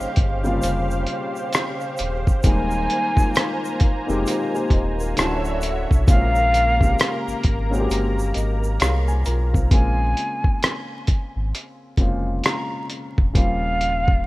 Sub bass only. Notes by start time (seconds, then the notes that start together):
0.17 G1
0.63 F1
2.00 D#1
2.45 D#1
4.09 F1
4.71 D#1
5.18 D1
5.91 B1
6.08 A#1
7.27 G#1
7.45 G#1
7.90 G1
8.36 G#1
8.81 C2
9.26 B1
9.72 A#1
11.36 G#1
11.98 F1
13.19 E1
13.35 D#1